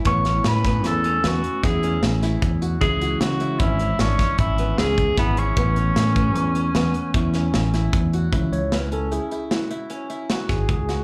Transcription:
<<
  \new Staff \with { instrumentName = "Tenor saxophone" } { \time 7/4 \key cis \minor \tempo 4 = 152 cis''4 b'4 a'4 fis'4 gis'4 r2 | gis'4 fis'4 e'4 cis'4 e'4 gis'4 b8 cis'8~ | cis'1. r4 | r1. r4 | }
  \new Staff \with { instrumentName = "Qanun" } { \time 7/4 \key cis \minor b8 cis'8 cis'8 b4 cis'8 b4 e'8 cis'4 e'4 fis'8 | e'8 fis'4 e'8 cis'8 cis'8 d'8 cis'4 b8 cis'4 e'8 e'8 | b8 cis'8 cis'8 b4 cis'8 b4 e'8 cis'4 e'4 fis'8 | e'4 cis'8 cis'8 e'8 e'8 fis'8 e'8 cis'8 e'8 fis'8 gis'4 fis'8 | }
  \new Staff \with { instrumentName = "Tine electric piano" } { \time 7/4 \key cis \minor <a b cis' e'>1.~ <a b cis' e'>4 | <e gis cis' e'>1.~ <e gis cis' e'>4 | <e a b cis'>1.~ <e a b cis'>4 | <e gis cis'>8 cis''8 b'8 a'8 gis'4 e'8 r4. fis'4 gis'4 | }
  \new Staff \with { instrumentName = "Fingered electric bass" } { \clef bass \time 7/4 \key cis \minor a,,4 a,4 e,4 e,8 r8 e,4 a,,4 e,4 | cis,4 cis4 gis,,4 gis,,8 r8 gis,,4 cis,4 gis,,4 | a,,4 a,4 e,4 e,8 r8 e,4 a,,4 e,4 | cis,8 cis,2 r2. gis,,8 cis,4 | }
  \new DrumStaff \with { instrumentName = "Drums" } \drummode { \time 7/4 <hh bd>8 <hh sn>8 <hh sn>8 <hh bd sn>8 <hh sn>8 hh8 <hh sn>8 hh8 <hh bd sn>8 hh8 <hh sn>8 <hh sn>8 <hh bd>8 hh8 | <hh bd>8 hh8 <hh sn>8 hh8 <hh bd>8 hh8 <hh sn>8 <hh bd sn>8 <hh bd>8 hh8 <hh sn>8 <hh bd>8 <hh bd sn>8 hh8 | <hh bd>8 hh8 <hh sn>8 <hh bd>8 hh8 hh8 <hh sn>8 hh8 <hh bd>8 <hh sn>8 <hh sn>8 <hh sn>8 <hh bd>8 hh8 | <hh bd>8 hh8 <hh sn>8 hh8 hh8 hh8 <hh sn>8 hh8 hh8 hh8 <hh sn>8 <hh bd sn>8 <hh bd>8 <hh sn>8 | }
>>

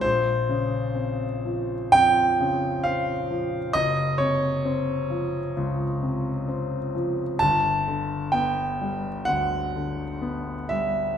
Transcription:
<<
  \new Staff \with { instrumentName = "Grand piano" } { \time 4/4 \key g \lydian \tempo 4 = 65 bis'2 g''4 eis''4 | dis''8 cis''2. r8 | a''4 g''4 fis''4. e''8 | }
  \new Staff \with { instrumentName = "Grand piano" } { \clef bass \time 4/4 \key g \lydian ais,,8 cis8 bis8 eis8 eis,8 cis8 bis8 eis8 | fis,,8 c8 c'8 eis8 cis,8 c8 c'8 eis8 | g,,8 d8 b8 g8 d,8 d8 b8 g8 | }
>>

